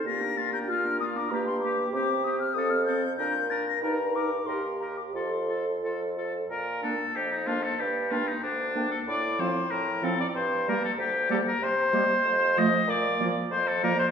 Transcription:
<<
  \new Staff \with { instrumentName = "Flute" } { \time 2/4 \key bes \major \tempo 4 = 94 bes'''8 a'''16 g'''16 f'''8 ees'''16 d'''16 | bes''16 c'''16 d'''8 d'''8 ees'''16 f'''16 | ees'''16 f'''16 g'''8 g'''8 a'''16 bes'''16 | bes''8 d'''8 c'''8 bes''16 d'''16 |
c'''4 r4 | r8 f''16 r8. f''16 r16 | r8 g''16 r8. g''16 r16 | r8 f''16 r8. f''16 r16 |
r8 d''16 r8. d''16 r16 | r8 ees''16 r8. ees''16 r16 | r8 d''16 r8. d''16 r16 | }
  \new Staff \with { instrumentName = "Oboe" } { \time 2/4 \key bes \major f'16 bes'16 f'16 bes'16 f'16 bes'16 f'16 bes'16 | g'8 g'8 g'8 g'8 | a'8 a'8 bes'8 bes'8 | bes'8 bes'8 bes'8 bes'8 |
a'8 a'8 a'8 a'8 | bes'8 a'8 g'16 ees'16 f'16 a'16 | g'8 f'16 ees'16 d'8. a'16 | d''8 c''8 bes'8 a'16 d''16 |
c''8 bes'16 a'16 g'8 a'16 bes'16 | c''4. ees''8 | d''8. r16 c''16 a'16 bes'16 c''16 | }
  \new Staff \with { instrumentName = "Clarinet" } { \time 2/4 \key bes \major bes16 d'16 bes16 d'16 bes16 d'16 bes16 d'16 | bes8 bes8 c'8 c'8 | c'8 c'8 d'8 d'8 | ees'8 ees'8 g'8 g'8 |
f'8 f'8 f'8 a'8 | r8 d'16 r8. d'16 r16 | r8 d'16 r8. d'16 r16 | r8 c'16 r8. c'16 r16 |
r8 bes16 r8. bes16 r16 | r8 bes16 r8. a16 r16 | r8 bes16 r8. bes16 r16 | }
  \new Staff \with { instrumentName = "French horn" } { \time 2/4 \key bes \major g'4 f'4 | g'4 g'4 | a'8 r8 bes'4~ | bes'4 g'4 |
a'4. r8 | r8 bes16 r8. bes16 r16 | r8 bes16 r8. bes16 r16 | r8 f16 r8. f16 r16 |
r8 g16 r8. g16 r16 | r8 g16 r8. f16 r16 | r8 f16 r8. f16 r16 | }
  \new Staff \with { instrumentName = "Bassoon" } { \clef bass \time 2/4 \key bes \major bes,2 | g,4 c4 | f,4 bes,4 | g,4 ees,4 |
f,4 f,4 | bes,4 f,4 | g,4 d,4 | a,4 a,4 |
g,4 d,4 | c4 f,4 | bes,4 f,4 | }
>>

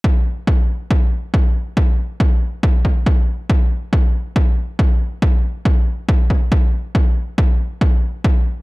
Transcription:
\new DrumStaff \with { instrumentName = "Drums" } \drummode { \time 4/4 \tempo 4 = 139 bd4 bd4 bd4 bd4 | bd4 bd4 bd8 bd8 bd4 | bd4 bd4 bd4 bd4 | bd4 bd4 bd8 bd8 bd4 |
bd4 bd4 bd4 bd4 | }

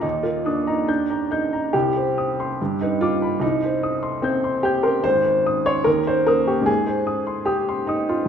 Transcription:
\new Staff \with { instrumentName = "Upright piano" } { \time 2/4 \key ees \major \tempo 4 = 73 << { ees,16 bes'16 ees'''16 bes''16 g'''16 bes''16 g'''16 bes''16 | c,16 c''16 ees'''16 c'''16 g,16 b'16 d'''16 b''16 | c,16 c''16 ees'''16 c'''16 g'''16 c'''16 g'''16 c'''16 | aes,,16 c''16 ees'''16 c'''16 ees,16 des''16 ees'''16 des'''16 |
aes,16 c''16 ees'''16 c'''16 ees'''16 c'''16 ees'''16 c'''16 | } \\ { ees'16 f'16 d'16 ees'16 d'8 ees'8 | g'4~ g'16 ees'16 f'8 | ees'4 c'8 g'16 bes'16 | c''8. des''16 bes'16 c''16 bes'16 g'16 |
aes'4 g'8 ees'16 f'16 | } >> }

